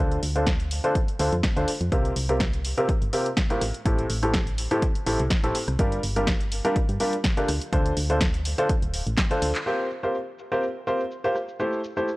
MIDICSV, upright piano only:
0, 0, Header, 1, 2, 480
1, 0, Start_track
1, 0, Tempo, 483871
1, 1905, Time_signature, 4, 2, 24, 8
1, 12070, End_track
2, 0, Start_track
2, 0, Title_t, "Upright piano"
2, 0, Program_c, 0, 0
2, 0, Note_on_c, 0, 50, 87
2, 0, Note_on_c, 0, 62, 76
2, 0, Note_on_c, 0, 65, 77
2, 0, Note_on_c, 0, 69, 79
2, 0, Note_on_c, 0, 72, 94
2, 175, Note_off_c, 0, 50, 0
2, 175, Note_off_c, 0, 62, 0
2, 175, Note_off_c, 0, 65, 0
2, 175, Note_off_c, 0, 69, 0
2, 175, Note_off_c, 0, 72, 0
2, 353, Note_on_c, 0, 50, 80
2, 353, Note_on_c, 0, 62, 74
2, 353, Note_on_c, 0, 69, 75
2, 353, Note_on_c, 0, 72, 86
2, 354, Note_on_c, 0, 65, 74
2, 461, Note_off_c, 0, 50, 0
2, 461, Note_off_c, 0, 62, 0
2, 461, Note_off_c, 0, 65, 0
2, 461, Note_off_c, 0, 69, 0
2, 461, Note_off_c, 0, 72, 0
2, 833, Note_on_c, 0, 50, 90
2, 833, Note_on_c, 0, 62, 89
2, 833, Note_on_c, 0, 65, 83
2, 833, Note_on_c, 0, 69, 84
2, 833, Note_on_c, 0, 72, 102
2, 941, Note_off_c, 0, 50, 0
2, 941, Note_off_c, 0, 62, 0
2, 941, Note_off_c, 0, 65, 0
2, 941, Note_off_c, 0, 69, 0
2, 941, Note_off_c, 0, 72, 0
2, 1185, Note_on_c, 0, 50, 88
2, 1185, Note_on_c, 0, 62, 76
2, 1185, Note_on_c, 0, 65, 76
2, 1185, Note_on_c, 0, 69, 76
2, 1185, Note_on_c, 0, 72, 92
2, 1310, Note_off_c, 0, 50, 0
2, 1310, Note_off_c, 0, 62, 0
2, 1310, Note_off_c, 0, 65, 0
2, 1310, Note_off_c, 0, 69, 0
2, 1310, Note_off_c, 0, 72, 0
2, 1553, Note_on_c, 0, 50, 89
2, 1553, Note_on_c, 0, 62, 85
2, 1553, Note_on_c, 0, 65, 80
2, 1553, Note_on_c, 0, 69, 81
2, 1553, Note_on_c, 0, 72, 99
2, 1661, Note_off_c, 0, 50, 0
2, 1661, Note_off_c, 0, 62, 0
2, 1661, Note_off_c, 0, 65, 0
2, 1661, Note_off_c, 0, 69, 0
2, 1661, Note_off_c, 0, 72, 0
2, 1904, Note_on_c, 0, 60, 77
2, 1905, Note_on_c, 0, 48, 90
2, 1905, Note_on_c, 0, 65, 80
2, 1905, Note_on_c, 0, 67, 78
2, 1905, Note_on_c, 0, 70, 91
2, 2095, Note_off_c, 0, 48, 0
2, 2095, Note_off_c, 0, 60, 0
2, 2095, Note_off_c, 0, 65, 0
2, 2095, Note_off_c, 0, 67, 0
2, 2095, Note_off_c, 0, 70, 0
2, 2274, Note_on_c, 0, 48, 79
2, 2274, Note_on_c, 0, 60, 72
2, 2274, Note_on_c, 0, 65, 72
2, 2274, Note_on_c, 0, 67, 71
2, 2274, Note_on_c, 0, 70, 89
2, 2382, Note_off_c, 0, 48, 0
2, 2382, Note_off_c, 0, 60, 0
2, 2382, Note_off_c, 0, 65, 0
2, 2382, Note_off_c, 0, 67, 0
2, 2382, Note_off_c, 0, 70, 0
2, 2753, Note_on_c, 0, 48, 91
2, 2753, Note_on_c, 0, 60, 88
2, 2753, Note_on_c, 0, 65, 85
2, 2753, Note_on_c, 0, 67, 84
2, 2753, Note_on_c, 0, 70, 102
2, 2861, Note_off_c, 0, 48, 0
2, 2861, Note_off_c, 0, 60, 0
2, 2861, Note_off_c, 0, 65, 0
2, 2861, Note_off_c, 0, 67, 0
2, 2861, Note_off_c, 0, 70, 0
2, 3105, Note_on_c, 0, 48, 87
2, 3105, Note_on_c, 0, 60, 81
2, 3105, Note_on_c, 0, 65, 79
2, 3105, Note_on_c, 0, 70, 94
2, 3106, Note_on_c, 0, 67, 79
2, 3230, Note_off_c, 0, 48, 0
2, 3230, Note_off_c, 0, 60, 0
2, 3230, Note_off_c, 0, 65, 0
2, 3230, Note_off_c, 0, 67, 0
2, 3230, Note_off_c, 0, 70, 0
2, 3474, Note_on_c, 0, 60, 80
2, 3474, Note_on_c, 0, 67, 84
2, 3474, Note_on_c, 0, 70, 101
2, 3475, Note_on_c, 0, 45, 92
2, 3475, Note_on_c, 0, 65, 85
2, 3572, Note_off_c, 0, 45, 0
2, 3572, Note_off_c, 0, 60, 0
2, 3572, Note_off_c, 0, 65, 0
2, 3572, Note_off_c, 0, 67, 0
2, 3572, Note_off_c, 0, 70, 0
2, 3825, Note_on_c, 0, 45, 89
2, 3825, Note_on_c, 0, 60, 80
2, 3825, Note_on_c, 0, 64, 80
2, 3825, Note_on_c, 0, 67, 82
2, 3825, Note_on_c, 0, 69, 94
2, 4015, Note_off_c, 0, 45, 0
2, 4015, Note_off_c, 0, 60, 0
2, 4015, Note_off_c, 0, 64, 0
2, 4015, Note_off_c, 0, 67, 0
2, 4015, Note_off_c, 0, 69, 0
2, 4194, Note_on_c, 0, 45, 78
2, 4194, Note_on_c, 0, 60, 76
2, 4194, Note_on_c, 0, 64, 70
2, 4194, Note_on_c, 0, 67, 76
2, 4194, Note_on_c, 0, 69, 92
2, 4302, Note_off_c, 0, 45, 0
2, 4302, Note_off_c, 0, 60, 0
2, 4302, Note_off_c, 0, 64, 0
2, 4302, Note_off_c, 0, 67, 0
2, 4302, Note_off_c, 0, 69, 0
2, 4674, Note_on_c, 0, 45, 94
2, 4674, Note_on_c, 0, 60, 88
2, 4674, Note_on_c, 0, 64, 85
2, 4674, Note_on_c, 0, 67, 87
2, 4674, Note_on_c, 0, 69, 103
2, 4782, Note_off_c, 0, 45, 0
2, 4782, Note_off_c, 0, 60, 0
2, 4782, Note_off_c, 0, 64, 0
2, 4782, Note_off_c, 0, 67, 0
2, 4782, Note_off_c, 0, 69, 0
2, 5025, Note_on_c, 0, 45, 86
2, 5025, Note_on_c, 0, 60, 78
2, 5025, Note_on_c, 0, 64, 79
2, 5025, Note_on_c, 0, 67, 78
2, 5025, Note_on_c, 0, 69, 99
2, 5150, Note_off_c, 0, 45, 0
2, 5150, Note_off_c, 0, 60, 0
2, 5150, Note_off_c, 0, 64, 0
2, 5150, Note_off_c, 0, 67, 0
2, 5150, Note_off_c, 0, 69, 0
2, 5394, Note_on_c, 0, 45, 89
2, 5394, Note_on_c, 0, 60, 87
2, 5394, Note_on_c, 0, 64, 88
2, 5394, Note_on_c, 0, 67, 86
2, 5394, Note_on_c, 0, 69, 102
2, 5501, Note_off_c, 0, 64, 0
2, 5501, Note_off_c, 0, 67, 0
2, 5502, Note_off_c, 0, 45, 0
2, 5502, Note_off_c, 0, 60, 0
2, 5502, Note_off_c, 0, 69, 0
2, 5744, Note_on_c, 0, 67, 84
2, 5745, Note_on_c, 0, 55, 89
2, 5745, Note_on_c, 0, 62, 80
2, 5745, Note_on_c, 0, 65, 81
2, 5745, Note_on_c, 0, 70, 101
2, 5935, Note_off_c, 0, 55, 0
2, 5935, Note_off_c, 0, 62, 0
2, 5935, Note_off_c, 0, 65, 0
2, 5935, Note_off_c, 0, 67, 0
2, 5935, Note_off_c, 0, 70, 0
2, 6114, Note_on_c, 0, 55, 84
2, 6114, Note_on_c, 0, 62, 74
2, 6114, Note_on_c, 0, 65, 74
2, 6114, Note_on_c, 0, 67, 75
2, 6114, Note_on_c, 0, 70, 90
2, 6221, Note_off_c, 0, 62, 0
2, 6222, Note_off_c, 0, 55, 0
2, 6222, Note_off_c, 0, 65, 0
2, 6222, Note_off_c, 0, 67, 0
2, 6222, Note_off_c, 0, 70, 0
2, 6593, Note_on_c, 0, 55, 98
2, 6593, Note_on_c, 0, 62, 89
2, 6593, Note_on_c, 0, 65, 90
2, 6593, Note_on_c, 0, 67, 86
2, 6593, Note_on_c, 0, 70, 108
2, 6701, Note_off_c, 0, 55, 0
2, 6701, Note_off_c, 0, 62, 0
2, 6701, Note_off_c, 0, 65, 0
2, 6701, Note_off_c, 0, 67, 0
2, 6701, Note_off_c, 0, 70, 0
2, 6945, Note_on_c, 0, 55, 88
2, 6945, Note_on_c, 0, 62, 80
2, 6945, Note_on_c, 0, 65, 79
2, 6945, Note_on_c, 0, 67, 79
2, 6945, Note_on_c, 0, 70, 98
2, 7070, Note_off_c, 0, 55, 0
2, 7070, Note_off_c, 0, 62, 0
2, 7070, Note_off_c, 0, 65, 0
2, 7070, Note_off_c, 0, 67, 0
2, 7070, Note_off_c, 0, 70, 0
2, 7313, Note_on_c, 0, 62, 87
2, 7314, Note_on_c, 0, 50, 95
2, 7314, Note_on_c, 0, 65, 87
2, 7314, Note_on_c, 0, 67, 88
2, 7314, Note_on_c, 0, 70, 103
2, 7411, Note_off_c, 0, 62, 0
2, 7412, Note_off_c, 0, 50, 0
2, 7412, Note_off_c, 0, 65, 0
2, 7412, Note_off_c, 0, 67, 0
2, 7412, Note_off_c, 0, 70, 0
2, 7664, Note_on_c, 0, 62, 79
2, 7665, Note_on_c, 0, 50, 88
2, 7665, Note_on_c, 0, 65, 79
2, 7665, Note_on_c, 0, 69, 78
2, 7665, Note_on_c, 0, 72, 97
2, 7855, Note_off_c, 0, 50, 0
2, 7855, Note_off_c, 0, 62, 0
2, 7855, Note_off_c, 0, 65, 0
2, 7855, Note_off_c, 0, 69, 0
2, 7855, Note_off_c, 0, 72, 0
2, 8033, Note_on_c, 0, 50, 78
2, 8033, Note_on_c, 0, 62, 73
2, 8033, Note_on_c, 0, 65, 73
2, 8033, Note_on_c, 0, 69, 77
2, 8034, Note_on_c, 0, 72, 90
2, 8141, Note_off_c, 0, 50, 0
2, 8141, Note_off_c, 0, 62, 0
2, 8141, Note_off_c, 0, 65, 0
2, 8141, Note_off_c, 0, 69, 0
2, 8141, Note_off_c, 0, 72, 0
2, 8514, Note_on_c, 0, 50, 98
2, 8514, Note_on_c, 0, 62, 85
2, 8514, Note_on_c, 0, 65, 88
2, 8514, Note_on_c, 0, 69, 88
2, 8514, Note_on_c, 0, 72, 105
2, 8622, Note_off_c, 0, 50, 0
2, 8622, Note_off_c, 0, 62, 0
2, 8622, Note_off_c, 0, 65, 0
2, 8622, Note_off_c, 0, 69, 0
2, 8622, Note_off_c, 0, 72, 0
2, 9233, Note_on_c, 0, 50, 94
2, 9233, Note_on_c, 0, 65, 86
2, 9233, Note_on_c, 0, 72, 102
2, 9234, Note_on_c, 0, 62, 83
2, 9234, Note_on_c, 0, 69, 85
2, 9416, Note_off_c, 0, 50, 0
2, 9416, Note_off_c, 0, 62, 0
2, 9416, Note_off_c, 0, 65, 0
2, 9416, Note_off_c, 0, 69, 0
2, 9416, Note_off_c, 0, 72, 0
2, 9584, Note_on_c, 0, 60, 81
2, 9584, Note_on_c, 0, 65, 72
2, 9584, Note_on_c, 0, 70, 75
2, 9584, Note_on_c, 0, 72, 87
2, 9585, Note_on_c, 0, 67, 72
2, 9775, Note_off_c, 0, 60, 0
2, 9775, Note_off_c, 0, 65, 0
2, 9775, Note_off_c, 0, 67, 0
2, 9775, Note_off_c, 0, 70, 0
2, 9775, Note_off_c, 0, 72, 0
2, 9952, Note_on_c, 0, 65, 66
2, 9952, Note_on_c, 0, 67, 69
2, 9953, Note_on_c, 0, 60, 72
2, 9953, Note_on_c, 0, 70, 67
2, 9953, Note_on_c, 0, 72, 82
2, 10061, Note_off_c, 0, 60, 0
2, 10061, Note_off_c, 0, 65, 0
2, 10061, Note_off_c, 0, 67, 0
2, 10061, Note_off_c, 0, 70, 0
2, 10061, Note_off_c, 0, 72, 0
2, 10433, Note_on_c, 0, 60, 88
2, 10433, Note_on_c, 0, 65, 80
2, 10433, Note_on_c, 0, 67, 77
2, 10433, Note_on_c, 0, 70, 82
2, 10433, Note_on_c, 0, 72, 93
2, 10541, Note_off_c, 0, 60, 0
2, 10541, Note_off_c, 0, 65, 0
2, 10541, Note_off_c, 0, 67, 0
2, 10541, Note_off_c, 0, 70, 0
2, 10541, Note_off_c, 0, 72, 0
2, 10784, Note_on_c, 0, 60, 81
2, 10784, Note_on_c, 0, 67, 72
2, 10784, Note_on_c, 0, 70, 72
2, 10784, Note_on_c, 0, 72, 89
2, 10785, Note_on_c, 0, 65, 69
2, 10909, Note_off_c, 0, 67, 0
2, 10909, Note_off_c, 0, 70, 0
2, 10910, Note_off_c, 0, 60, 0
2, 10910, Note_off_c, 0, 65, 0
2, 10910, Note_off_c, 0, 72, 0
2, 11153, Note_on_c, 0, 65, 82
2, 11153, Note_on_c, 0, 67, 80
2, 11153, Note_on_c, 0, 70, 74
2, 11153, Note_on_c, 0, 72, 92
2, 11251, Note_off_c, 0, 65, 0
2, 11251, Note_off_c, 0, 67, 0
2, 11251, Note_off_c, 0, 70, 0
2, 11251, Note_off_c, 0, 72, 0
2, 11504, Note_on_c, 0, 57, 80
2, 11504, Note_on_c, 0, 64, 72
2, 11504, Note_on_c, 0, 67, 73
2, 11504, Note_on_c, 0, 69, 75
2, 11504, Note_on_c, 0, 72, 91
2, 11694, Note_off_c, 0, 57, 0
2, 11694, Note_off_c, 0, 64, 0
2, 11694, Note_off_c, 0, 67, 0
2, 11694, Note_off_c, 0, 69, 0
2, 11694, Note_off_c, 0, 72, 0
2, 11873, Note_on_c, 0, 57, 74
2, 11873, Note_on_c, 0, 64, 67
2, 11873, Note_on_c, 0, 67, 66
2, 11873, Note_on_c, 0, 69, 70
2, 11873, Note_on_c, 0, 72, 80
2, 11981, Note_off_c, 0, 57, 0
2, 11981, Note_off_c, 0, 64, 0
2, 11981, Note_off_c, 0, 67, 0
2, 11981, Note_off_c, 0, 69, 0
2, 11981, Note_off_c, 0, 72, 0
2, 12070, End_track
0, 0, End_of_file